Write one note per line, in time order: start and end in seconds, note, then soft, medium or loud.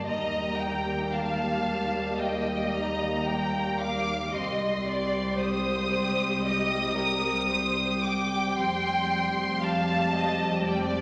0.05 4.33 D#2 medium
0.05 4.29 G3 medium
0.05 4.16 G3 medium
0.05 4.16 A#3 medium
0.05 4.28 G4 medium
0.05 0.58 D#5 medium
0.05 1.11 A#5 medium
0.59 1.13 G5 medium
1.13 2.20 F5 medium
1.13 2.20 A5 medium
2.19 3.26 D#5 medium
2.19 2.73 G5 medium
2.73 3.78 A#5 medium
3.26 3.79 G5 medium
3.79 4.33 F5 medium
3.79 4.33 D6 medium
4.32 8.58 C2 medium
4.32 8.53 G3 medium
4.32 8.54 G3 medium
4.32 8.54 C4 medium
4.32 8.53 G4 medium
4.32 4.85 D#5 medium
4.32 5.39 C6 medium
4.85 5.39 D5 medium
5.37 6.45 C5 medium
5.37 6.44 D#6 loud
6.43 6.98 D#5 medium
6.43 8.02 D#6 loud
6.97 7.51 A#4 medium
7.50 8.04 C5 medium
8.02 9.62 G5 medium
8.02 8.57 D6 loud
8.57 11.01 F1 medium
8.57 11.01 F2 medium
8.57 11.01 G3 medium
8.57 11.01 C4 medium
8.57 11.01 G4 medium
8.57 9.61 C6 loud
9.61 10.14 F5 medium
9.61 10.68 A5 loud
10.14 10.68 D#5 medium
10.66 11.01 D5 medium
10.66 11.01 G5 medium